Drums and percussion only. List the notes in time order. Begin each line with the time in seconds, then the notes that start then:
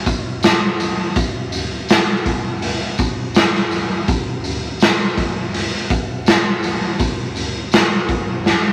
0.06 kick, open hi-hat, tambourine
0.43 snare, open hi-hat, tambourine
0.80 open hi-hat, tambourine
1.16 kick, open hi-hat, tambourine
1.52 open hi-hat, tambourine
1.89 snare, open hi-hat, tambourine
2.25 kick, open hi-hat, tambourine
2.62 open hi-hat
2.98 kick, open hi-hat, tambourine
3.35 snare, open hi-hat, tambourine
3.55 snare
3.71 open hi-hat, tambourine
4.08 kick, open hi-hat, tambourine
4.44 open hi-hat, tambourine
4.80 snare, open hi-hat, tambourine
5.17 kick, open hi-hat, tambourine
5.54 open hi-hat
5.90 kick, open hi-hat, tambourine
6.26 snare, open hi-hat, tambourine
6.63 open hi-hat, tambourine
6.99 kick, open hi-hat, tambourine
7.36 open hi-hat, tambourine
7.72 snare, open hi-hat, tambourine
8.09 kick, open hi-hat, tambourine
8.44 snare, tambourine